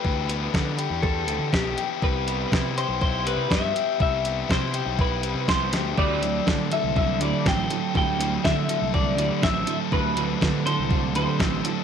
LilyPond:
<<
  \new Staff \with { instrumentName = "Clean electric guitar" } { \time 4/4 \key d \mixolydian \tempo 4 = 122 b'2 a'4 g'8. r16 | b'4. c''8 c''8 b'8 e''4 | e''4 c''4 b'4 c''8. r16 | d''4. e''8 e''8 d''8 g''4 |
g''4 e''4 d''4 e''8. r16 | b'4. c''4 c''4 r8 | }
  \new Staff \with { instrumentName = "Overdriven electric guitar" } { \time 4/4 \key d \mixolydian e8 b8 d'8 g'8 d'8 e8 b8 g'8 | g8 b8 e'8 g'8 e'8 g8 b8 g'8 | g8 b8 e'8 g'8 e'8 g8 b8 g'8 | g8 c'8 d'8 a'8 d'8 g8 c'8 a'8 |
g8 c'8 d'8 a'8 d'8 g8 c'8 a'8 | g8 c'8 d'8 a'8 d'8 g8 c'8 a'8 | }
  \new Staff \with { instrumentName = "Distorted electric guitar" } { \clef bass \time 4/4 \key d \mixolydian r1 | r1 | r1 | <d fis a>8 <d fis>8 <d fis>8 <d fis>8 <d fis>8 <d fis>8 <d fis>8 <d fis>8 |
<d fis>8 <d fis>8 <d fis>8 <d fis>8 <d fis>8 <d fis>8 <d fis>8 <d fis>8 | <d fis>8 <d fis>8 <d fis>8 <d fis>8 <d fis>8 <d fis>8 <d fis>8 <d fis>8 | }
  \new Staff \with { instrumentName = "Fingered electric bass" } { \clef bass \time 4/4 \key d \mixolydian d,4 d8. e,8. d,16 d16 b,,8 r8 | c,4 c8. b,,8. c,16 c16 g,8 r8 | c,4 c8. b,,8. c,16 c16 c,8 d,8 | d,4 d8. c,8. d,16 d16 a,,8 r8 |
d,4 d8. c,8. d,16 d16 a,,8 r8 | d,4 d8. c,8. d,16 d16 a,,8 r8 | }
  \new DrumStaff \with { instrumentName = "Drums" } \drummode { \time 4/4 bd8 hh8 <bd sn>8 hh8 bd8 hh8 <bd sn>8 hh8 | bd8 hh8 <bd sn>8 hh8 bd8 hh8 <bd sn>8 hh8 | bd8 hh8 <bd sn>8 hh8 bd8 hh8 <bd sn>8 <hh sn>8 | bd8 hh8 <bd sn>8 hh8 bd8 hh8 <bd sn>8 hh8 |
bd8 hh8 <bd sn>8 hh8 bd8 hh8 <bd sn>8 hh8 | bd8 hh8 <bd sn>8 hh8 bd8 hh8 <bd sn>8 hh8 | }
>>